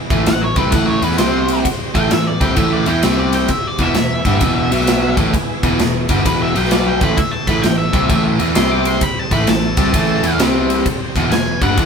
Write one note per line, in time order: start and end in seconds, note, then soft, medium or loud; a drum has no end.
0.00 0.11 G#3 medium
0.00 0.11 B3 medium
0.00 0.11 G#4 medium
0.10 0.26 A1 medium
0.10 0.26 A2 medium
0.10 0.27 E3 loud
0.10 1.18 E3 medium
0.10 1.18 A3 medium
0.10 0.27 A3 loud
0.10 1.18 E4 medium
0.10 1.18 A4 medium
0.10 kick loud
0.10 ride medium
0.26 0.55 A1 medium
0.26 0.51 A2 medium
0.26 0.51 E3 medium
0.26 0.42 F#5 loud
0.26 snare loud
0.26 ride medium
0.41 0.57 C#5 medium
0.56 0.72 C2 medium
0.56 0.72 C3 medium
0.56 0.73 G3 medium
0.56 0.73 C4 medium
0.56 0.72 B4 medium
0.56 kick loud
0.56 ride medium
0.72 1.01 A1 medium
0.72 1.02 A2 medium
0.72 1.02 E3 loud
0.72 1.02 A3 loud
0.72 0.87 F#5 medium
0.72 kick loud
0.72 ride loud
0.86 1.02 C#5 medium
1.02 1.18 E2 loud
1.02 1.19 E3 loud
1.02 1.19 B3 loud
1.02 1.19 E4 medium
1.02 1.18 B4 medium
1.02 ride medium
1.11 snare soft
1.18 1.62 C2 medium
1.18 1.65 C3 medium
1.18 1.65 G3 medium
1.18 1.95 G3 medium
1.18 1.65 C4 medium
1.18 1.95 C4 medium
1.18 1.95 G4 medium
1.18 1.63 C5 medium
1.18 1.95 C5 medium
1.18 snare loud
1.18 ride loud
1.48 ride medium
1.65 kick medium
1.65 ride medium
1.94 2.10 A1 loud
1.94 2.10 A2 medium
1.94 2.10 E3 medium
1.94 2.11 A3 loud
1.94 3.03 A3 medium
1.94 3.03 E4 medium
1.94 3.03 A4 medium
1.94 3.03 E5 medium
1.94 2.11 G5 loud
1.94 kick loud
1.94 ride medium
2.11 2.40 A1 medium
2.11 2.35 A2 medium
2.11 2.35 E3 medium
2.11 2.27 E5 medium
2.11 snare loud
2.11 ride medium
2.27 2.42 D5 medium
2.40 2.56 C2 medium
2.40 2.56 C3 medium
2.40 2.56 G3 medium
2.40 2.56 C4 medium
2.40 2.58 G5 medium
2.40 kick loud
2.40 ride medium
2.56 2.85 A1 medium
2.56 2.86 A2 medium
2.56 2.86 E3 medium
2.56 2.86 A3 loud
2.56 2.72 E5 medium
2.56 kick loud
2.56 ride loud
2.73 2.88 D5 medium
2.86 3.03 E2 medium
2.86 3.03 E3 medium
2.86 3.03 B3 medium
2.86 3.03 E4 loud
2.86 3.04 G5 medium
2.86 ride medium
3.03 3.47 C2 medium
3.03 3.49 C3 medium
3.03 3.78 G3 medium
3.03 3.49 G3 medium
3.03 3.79 C4 medium
3.03 3.50 C4 medium
3.03 3.79 G4 medium
3.03 3.79 C5 medium
3.03 3.19 E5 medium
3.03 snare loud
3.03 ride medium
3.19 3.34 D5 medium
3.33 3.51 G5 medium
3.33 ride medium
3.48 3.67 E5 medium
3.48 kick medium
3.48 ride medium
3.67 3.82 D5 medium
3.78 3.94 E1 medium
3.78 3.95 E2 medium
3.78 3.95 B2 loud
3.78 3.95 E3 loud
3.78 4.70 G#3 medium
3.78 4.70 B3 medium
3.78 4.70 E4 medium
3.78 4.70 G#4 medium
3.78 5.15 E5 medium
3.78 kick loud
3.78 ride medium
3.95 4.24 E1 medium
3.95 4.20 E2 medium
3.95 4.20 B2 medium
3.95 snare medium
3.95 ride medium
4.25 4.40 G1 medium
4.25 4.42 G2 medium
4.25 4.42 D3 medium
4.25 4.42 G3 loud
4.25 kick loud
4.25 ride medium
4.41 4.69 E1 medium
4.41 4.71 E2 medium
4.41 4.70 B2 loud
4.41 4.71 E3 loud
4.41 kick loud
4.41 ride loud
4.71 5.15 B1 medium
4.71 5.17 B2 medium
4.71 5.17 F#3 medium
4.71 5.17 B3 medium
4.71 5.17 B3 loud
4.71 5.17 F#4 medium
4.71 5.17 B4 medium
4.71 ride medium
4.80 snare soft
4.87 snare loud
4.87 ride medium
5.17 5.33 A1 medium
5.17 5.33 A2 medium
5.17 5.33 E3 medium
5.17 6.55 G#3 medium
5.17 5.34 A3 loud
5.17 6.53 B3 medium
5.17 6.54 E4 medium
5.17 6.54 G#4 medium
5.17 kick loud
5.17 ride medium
5.34 kick medium
5.34 ride medium
5.63 5.79 E1 loud
5.63 5.79 E2 medium
5.63 5.79 B2 medium
5.63 5.80 E3 loud
5.63 kick loud
5.63 ride medium
5.79 6.08 E1 medium
5.79 6.04 E2 medium
5.79 6.04 B2 medium
5.79 snare medium
5.79 ride medium
6.09 6.24 G1 medium
6.09 6.25 G2 medium
6.09 6.26 D3 medium
6.09 6.26 G3 medium
6.09 kick loud
6.09 ride medium
6.25 6.53 E1 medium
6.25 6.55 E2 loud
6.25 6.53 B2 loud
6.25 6.55 E3 loud
6.25 6.41 B4 medium
6.25 kick loud
6.25 ride loud
6.42 6.56 E5 medium
6.54 6.99 B1 medium
6.54 7.00 B2 medium
6.54 7.00 F#3 medium
6.54 7.01 F#3 loud
6.54 6.98 B3 medium
6.54 7.01 B3 medium
6.54 7.00 F#4 medium
6.54 7.01 B4 medium
6.54 6.72 G5 loud
6.54 ride medium
6.64 snare soft
6.71 6.87 D5 loud
6.71 snare loud
6.71 ride medium
6.86 7.02 G5 medium
6.99 7.17 A1 medium
6.99 7.17 A2 medium
6.99 7.18 E3 medium
6.99 7.46 G#3 medium
6.99 7.18 A3 loud
6.99 7.46 B3 medium
6.99 7.45 E4 medium
6.99 7.46 G#4 medium
6.99 7.18 B5 medium
6.99 kick loud
6.99 ride medium
7.17 7.32 E5 medium
7.17 kick loud
7.17 ride medium
7.31 7.47 A5 medium
7.46 7.63 A1 loud
7.46 7.63 A2 medium
7.46 8.54 E3 medium
7.46 7.64 E3 medium
7.46 8.54 A3 medium
7.46 7.64 A3 loud
7.46 8.54 E4 medium
7.46 8.54 A4 medium
7.46 7.63 B5 medium
7.46 kick medium
7.46 ride medium
7.63 7.92 A1 medium
7.63 7.88 A2 medium
7.63 7.88 E3 medium
7.63 7.77 G5 medium
7.63 snare medium
7.63 ride medium
7.78 8.23 E5 loud
7.93 8.09 C2 loud
7.93 8.09 C3 medium
7.93 8.10 G3 medium
7.93 8.10 C4 loud
7.93 kick loud
7.93 ride medium
8.09 8.38 A1 medium
8.09 8.39 A2 medium
8.09 8.38 E3 loud
8.09 8.39 A3 loud
8.09 kick loud
8.09 ride medium
8.39 8.55 E2 medium
8.39 8.55 E3 loud
8.39 8.56 B3 medium
8.39 8.56 E4 medium
8.39 ride medium
8.55 8.99 C2 medium
8.55 9.02 C3 medium
8.55 9.30 G3 medium
8.55 9.02 G3 medium
8.55 9.31 C4 medium
8.55 9.02 C4 loud
8.55 9.31 G4 medium
8.55 9.30 C5 medium
8.55 8.71 C6 loud
8.55 snare loud
8.55 ride medium
8.71 8.86 D6 loud
8.85 9.02 C6 loud
8.85 ride medium
9.01 9.19 B5 loud
9.01 kick medium
9.01 ride medium
9.19 9.32 A5 medium
9.31 9.46 A1 loud
9.31 9.47 A2 loud
9.31 9.48 E3 medium
9.31 10.39 A3 medium
9.31 9.48 A3 loud
9.31 10.39 E4 medium
9.31 10.39 A4 medium
9.31 10.39 E5 medium
9.31 9.48 B5 medium
9.31 kick medium
9.31 ride medium
9.47 9.75 A1 medium
9.47 9.72 A2 medium
9.47 9.72 E3 medium
9.47 10.38 A5 medium
9.47 snare loud
9.47 ride medium
9.77 9.93 C2 medium
9.77 9.93 C3 medium
9.77 9.94 G3 medium
9.77 9.94 C4 medium
9.77 kick loud
9.77 ride medium
9.94 10.22 A1 medium
9.94 10.23 A2 medium
9.94 10.22 E3 medium
9.94 10.23 A3 medium
9.94 kick loud
9.94 ride loud
10.23 10.38 E2 medium
10.23 10.39 E3 medium
10.23 10.40 B3 loud
10.23 10.40 E4 loud
10.23 ride medium
10.39 10.82 C2 medium
10.39 10.85 C3 medium
10.39 11.15 G3 medium
10.39 10.86 G3 medium
10.39 11.15 C4 medium
10.39 10.86 C4 medium
10.39 11.14 G4 medium
10.39 11.15 C5 medium
10.39 snare loud
10.39 ride loud
10.70 ride medium
10.86 kick medium
10.86 ride medium
11.15 11.30 E1 loud
11.15 11.31 E2 medium
11.15 11.32 B2 loud
11.15 11.32 E3 medium
11.15 11.85 G#3 medium
11.15 11.85 B3 medium
11.15 11.85 E4 medium
11.15 11.85 G#4 medium
11.15 kick loud
11.15 ride medium
11.31 11.59 E1 medium
11.31 11.56 E2 medium
11.31 11.56 B2 medium
11.31 11.61 G#5 loud
11.31 snare loud
11.31 ride medium
11.61 11.77 G1 medium
11.61 11.77 G2 medium
11.61 11.78 D3 loud
11.61 11.78 G3 medium
11.61 11.85 F#5 loud
11.61 kick loud
11.61 ride medium
11.78 11.85 E1 medium
11.78 11.85 E2 medium
11.78 11.85 B2 loud
11.78 11.85 E3 loud
11.78 kick loud
11.78 ride medium